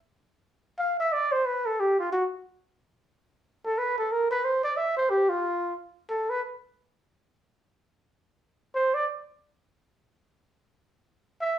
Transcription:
0.79 F5
1.00 E5
1.13 D5
1.32 C5
1.46 B4
1.66 A4
1.80 G4
1.99 F4
2.12 F#4
3.65 A4
3.78 B4
3.98 A4
4.12 A#4
4.31 B4
4.45 C5
4.64 D5
4.77 E5
4.97 C5
5.10 G4
5.29 F4
6.09 A4
6.30 B4
8.75 C5
8.94 D5
11.41 E5

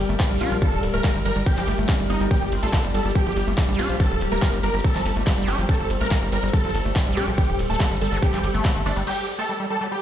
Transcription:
Already playing: G3 G4 A#4 D5
0.09 G1 A3, closed hi-hat
0.20 G3, kick, clap, closed hi-hat
0.30 A#1 G3, closed hi-hat
0.41 A#1 D4 F4, open hi-hat, ride
0.51 A#1 F3, closed hi-hat
0.62 G3 A4, kick, closed hi-hat
0.72 D1, closed hi-hat
0.83 D1, open hi-hat, ride
0.94 D1 A3 A#4, closed hi-hat
1.04 G3, kick, clap, closed hi-hat
1.15 G1 G3, closed hi-hat
1.25 G1 G3 A#4, open hi-hat, ride
1.36 G1 G3, closed hi-hat
1.46 G3 G4, kick, closed hi-hat
1.57 G1 F3, clap, closed hi-hat
1.67 G1 A3, open hi-hat, ride
1.78 G1 A3
1.89 D4, kick, clap, closed hi-hat
1.99 G1 G3, closed hi-hat
2.10 G1 A#3 D#4, open hi-hat, ride
2.20 G1 G3, closed hi-hat
2.31 G3 G4, kick, closed hi-hat
2.42 G1, closed hi-hat
2.52 G1 C4, open hi-hat, ride
2.63 A1 A3 F4 A4, closed hi-hat
2.73 G3 F4, kick, clap, closed hi-hat
2.84 G1 G3, closed hi-hat
2.92 G1 G3 A4 C5, open hi-hat, ride
3.05 G1 G3, closed hi-hat
3.15 G3 G4, kick, closed hi-hat
3.26 G1 F3, closed hi-hat
3.37 G1, open hi-hat, ride
3.47 G1 A3, closed hi-hat
3.58 G3, kick, clap, closed hi-hat
3.68 A#1 G3, closed hi-hat
3.79 A#1 D4 F4, open hi-hat, ride
3.89 A#1 F3 C4
4.00 G3 C4 A4, kick, closed hi-hat
4.10 D1, closed hi-hat
4.21 D1, open hi-hat, ride
4.32 D1 A3 A#3 A#4, closed hi-hat
4.42 G3 A#3, kick, clap, closed hi-hat
4.53 G1 G3, closed hi-hat
4.63 G1 G3 A#4, open hi-hat, ride
4.74 G1 G3, closed hi-hat
4.84 G3 A4, kick, closed hi-hat
4.95 G1 F3, clap, closed hi-hat
5.06 G1 A#3, open hi-hat, ride
5.16 G1 A3, closed hi-hat
5.27 G3, kick, clap, closed hi-hat
5.37 G1 G3, closed hi-hat
5.48 G1 D4 G4, open hi-hat, ride
5.58 G1 F3 A#3, closed hi-hat
5.69 G3 A#3 A4, kick, closed hi-hat
5.80 G1, closed hi-hat
5.90 G1, open hi-hat, ride
6.01 A1 A3 A#4, closed hi-hat
6.11 G3, kick, clap, closed hi-hat
6.22 G1 G3, closed hi-hat
6.32 G1 G3 A#4, open hi-hat, ride
6.43 G1 G3, closed hi-hat
6.53 G3 A4, kick, closed hi-hat
6.64 G1 F3, closed hi-hat
6.75 G1, open hi-hat, ride
6.85 G1 A3, closed hi-hat
6.96 G3, kick, clap, closed hi-hat
7.06 A#1 G3, closed hi-hat
7.17 A#1 D4 G4, open hi-hat, ride
7.27 A#1 F3, closed hi-hat
7.38 G3 G4, kick, closed hi-hat
7.49 D1, closed hi-hat
7.59 D1, open hi-hat, ride
7.70 D1 A3 A4, closed hi-hat
7.80 G3, kick, clap, closed hi-hat
7.91 G1 G3, closed hi-hat
8.01 G1 G3 A4, open hi-hat, ride
8.12 G1 G3, closed hi-hat
8.22 G3 G4, kick, closed hi-hat
8.33 G1 F3, clap, closed hi-hat
8.44 G1, open hi-hat, ride
8.54 G1 A3, closed hi-hat
8.65 G3, kick, clap, closed hi-hat
8.75 G1 A3, closed hi-hat
8.86 G1 A3 D4, closed hi-hat, open hi-hat
8.91 closed hi-hat
8.96 G1 G3, closed hi-hat
9.02 closed hi-hat
9.07 G3 G4, crash
9.39 A3 A4
9.49 G3
9.57 G3 D5
9.70 G3 A4
9.81 G3
9.91 G3 G4

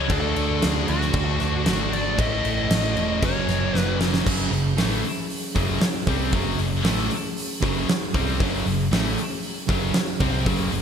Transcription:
Already playing: C#5
0.09 D2 D3 A3 D4 F#4 A4 D5 A5, kick, crash
0.36 D2, crash
0.62 D2, snare, crash
0.66 G#4
0.88 D2 F#4, crash
1.01 snare
1.13 D2 D3 A3 D4 F#4, kick, crash
1.40 D2 D3 A3 D4, snare, crash
1.66 G#1 D3 A3 D4, snare, crash
1.93 D5, crash
2.16 A1 A2 E3 A3 C#4 E4 C#5 A5, kick, crash
2.20 E4 D#5
2.44 A1, crash
2.70 A1, snare, crash
2.95 E1, crash
3.21 F#1 F#2 C#3 F#3 A#3 C#4 F#4 C#5 A#5, kick, crash
3.48 F#1, snare, crash
3.74 F#1, snare
3.78 B4
4.01 snare
4.14 snare
4.26 F#1 F#2 C#3 F#3 C#4 G#4, kick, crash
4.51 F#1 F#2 C#3, open hi-hat
4.77 A1 A2 E3 A3, snare, open hi-hat
5.04 open hi-hat
5.30 open hi-hat
5.56 F#1 F#2 C#3 F#3, kick, open hi-hat
5.81 muted distorted electric guitar stroke, snare, open hi-hat
6.07 C2 C3 G3 C4, kick, open hi-hat
6.32 F#1 F#2 C#3 F#3, kick, open hi-hat
6.58 F#1 F#2 C#3, open hi-hat
6.84 A1 A2 E3 A3, snare, open hi-hat
7.11 open hi-hat
7.37 open hi-hat
7.62 F#1 F#2 C#3 F#3, kick, open hi-hat
7.89 muted distorted electric guitar stroke, snare, open hi-hat
8.14 C2 C3 G3 C4, kick, open hi-hat
8.40 F#1 F#2 C#3 F#3, kick, open hi-hat
8.66 F#1 F#2 C#3, open hi-hat
8.91 A1 A2 E3 A3, snare, open hi-hat
9.18 open hi-hat
9.43 open hi-hat
9.69 F#1 F#2 C#3 F#3, kick, open hi-hat
9.94 muted distorted electric guitar stroke, snare, open hi-hat
10.20 C2 C3 G3 C4, kick, open hi-hat
10.46 F#1 F#2 C#3 F#3, kick, open hi-hat
10.72 F#1 F#2 C#3, open hi-hat

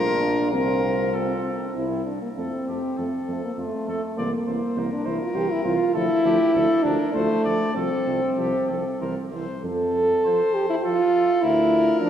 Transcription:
Already playing: A#1 D4 F4 A#4
0.21 D4
0.51 C2 C4 F4 A#4
1.13 C4 F4 A4
1.75 C2 E4
2.06 D4
2.22 A#3
2.36 F2 A3 C4 A4
2.67 F2 A3 G4 A4
2.97 F2 A3 A4
3.28 F2 A3 A4
3.44 A#3
3.57 F2 A3 F4 A4
3.87 F2 A3 A4
4.16 C2 E3 A#3 C5 D5
4.46 C2 E3 C5
4.76 C2 E3 A#4 C5
4.93 D4
5.05 C2 E3 E4 C5
5.22 F4
5.34 C2 E3 G4 C5
5.51 E4
5.63 C2 E3 F4 C5
5.93 D2 F3 E4 A4
6.24 D2 F3 G4 A4
6.54 D2 F3 A4
6.83 D2 F3 D4 A4 A#4
7.13 D2 F3 A3 A4 C5
7.44 D2 F3 A4 D5
7.75 C2 F3 C4 A4
8.07 C2 F3 A4
8.37 C2 F3 G4 A4
8.69 C2 F3 A4
9.00 C2 E3 A#4 C5
9.32 C2 E3 C5
9.63 F2 A4
10.25 F3 C5
10.54 G4
10.69 E4
10.83 F3 F4 A4 C5
11.42 D2 E4 A#4
12.01 F3 D4 A#4

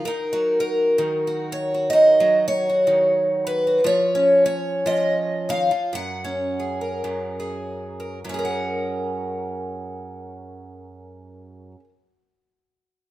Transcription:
0.05 D#3 A#4
0.33 F#3
0.60 A#4
0.98 D#3
1.27 F#4
1.52 C#5
1.74 F#4
1.90 D#3 D#5
2.20 F#3
2.48 C#5
2.69 F#4
2.87 D#3
3.47 B4
3.67 F#4
3.84 F3 C#5
4.15 C#4
4.46 C#5
4.86 F3 D#5
5.49 D#3 F5
5.71 F3
5.93 F#2 F#5
6.25 C#4
6.60 G#4
6.81 A#4
7.04 F#2
7.40 G#4
8.00 A#4
8.25 F#2
8.29 C#4
8.34 G#4
8.39 A#4
8.45 F#5

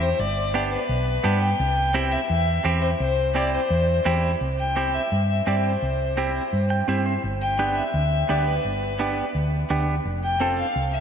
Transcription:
Already playing: E2
0.02 C5
0.19 G1 D5
0.54 B3 D4 G4 D5
0.71 B4
0.89 B1
1.24 G2 B3 D4 G4
1.42 G5
1.60 C2
1.94 C4 E4 G4
2.12 E5
2.30 E2 E5
2.65 E2 C4 E4 G4
2.82 C5
2.99 C2 C5
3.35 C4 E4 G4 D5
3.54 C5
3.70 E2
4.05 E2 C4 E4 G4
4.41 C2
4.58 G5
4.76 C4 E4 G4
4.94 E5
5.12 G2
5.29 E5
5.47 G2 C4 E4 G4 D5
5.65 C5
5.82 C2
6.17 C4 E4 G4
6.53 G2
6.70 G5
6.88 G2 C4 E4 G4 E5
7.06 C5
7.24 G1
7.41 G5
7.59 B3 D4 G4
7.76 E5
7.94 D2
8.29 D2 B3 D4 G4 D5
8.47 B4
8.65 G1
8.99 B3 D4 G4
9.35 D2
9.70 D2 B3 D4 G4
10.05 F1
10.23 G5
10.40 C4 F4 A4
10.58 F5
10.76 C2
10.93 E5

